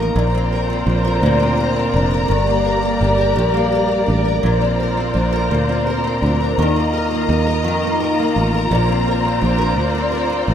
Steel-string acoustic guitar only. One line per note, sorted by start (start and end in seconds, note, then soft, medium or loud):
0.00 0.23 D#3 medium
0.00 0.34 A#3 medium
0.00 0.23 D#4 medium
0.00 0.38 A#4 medium
0.16 1.22 A#2 medium
0.35 0.69 C4 medium
0.53 1.04 A#4 medium
0.70 1.39 C4 medium
0.87 1.93 D4 medium
1.05 1.57 A#4 medium
1.23 2.28 A#2 medium
1.40 1.75 C4 medium
1.57 2.10 A#4 medium
1.76 2.36 C4 medium
1.94 3.01 D4 medium
2.11 2.64 A#4 medium
2.28 3.34 G2 medium
2.47 2.82 A#3 medium
2.65 3.18 A#4 medium
2.83 3.54 A#3 medium
3.01 4.06 D4 medium
3.18 3.72 A#4 medium
3.36 4.43 G2 medium
3.54 3.88 A#3 medium
3.72 4.25 A#4 medium
3.89 4.61 A#3 medium
4.06 4.64 D4 soft
4.25 4.64 A#4 medium
4.43 5.50 A#2 medium
4.61 4.96 C4 medium
4.80 5.32 A#4 medium
4.97 5.68 C4 medium
5.14 6.21 D4 medium
5.32 5.86 A#4 medium
5.51 6.65 A#2 medium
5.69 6.03 C4 medium
5.87 6.40 A#4 medium
6.04 6.65 C4 medium
6.23 6.65 D4 medium
6.41 6.93 A#4 medium
6.59 7.63 D#3 medium
6.76 7.10 A#3 medium
6.93 7.47 A#4 medium
7.11 7.83 A#3 medium
7.29 8.35 D#4 medium
7.47 8.00 A#4 medium
7.64 8.78 D#3 medium
7.84 8.19 A#3 medium
8.00 8.54 A#4 medium
8.19 8.88 A#3 medium
8.37 8.79 D#4 medium
8.54 8.92 A#4 medium
8.71 9.77 A#2 medium
8.89 9.24 C4 medium
9.08 9.58 A#4 medium
9.25 9.94 C4 medium
9.41 10.47 D4 medium
9.58 10.11 A#4 medium
9.95 10.29 C4 medium
10.12 10.54 A#4 medium
10.30 10.54 C4 medium
10.47 10.54 D4 medium